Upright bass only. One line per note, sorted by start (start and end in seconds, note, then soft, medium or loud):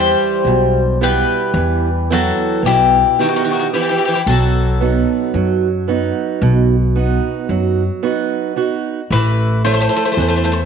0.00 0.13 E2 medium
0.45 1.21 B1 medium
1.54 2.30 E2 loud
2.63 3.01 B1 medium
4.26 5.02 B1 medium
5.34 6.10 F#2 medium
6.42 7.17 B1 loud
7.49 7.87 F#2 medium
9.10 9.85 A1 medium
10.17 10.65 E2 medium